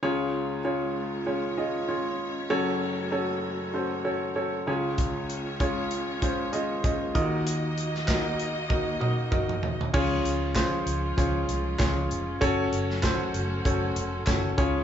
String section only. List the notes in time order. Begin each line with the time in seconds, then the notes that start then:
0.03 G#3 C#4 F4 C#5
2.50 A3 F#4
4.67 G#3 C#4 F4 C#5
7.15 A#3 D#4 F#4 D#5
9.94 F3 G#3 C#4 F4
12.41 F#3 A3 F#4
14.57 F3 G#3 F4